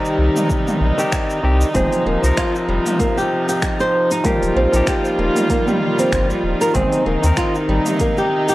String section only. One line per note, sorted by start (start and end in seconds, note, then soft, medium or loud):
0.00 1.71 C3 medium
0.00 1.71 D#3 medium
0.00 1.72 G3 medium
0.00 4.21 D#4 medium
1.75 4.23 C3 medium
1.75 4.23 F3 medium
4.25 8.55 D#3 medium
4.25 6.73 G3 medium
4.25 6.73 A#3 medium
4.25 6.73 F4 medium
6.75 8.55 C3 medium
6.75 8.55 D#4 medium